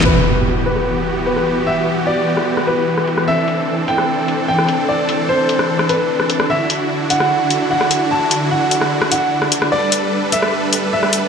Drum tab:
HH |--x---x---x---x-|--x---x---x---x-|--x---x---x---x-|--x---x---x---x-|
SD |-------r-----r--|-------r-r---r-r|-------r-----r--|-------r-r---r-r|

HH |--x---x---x---x-|--x---x---x---x-|--x---x---x---x-|
SD |-------r-----r--|-------r-r---r-r|-------r-----r--|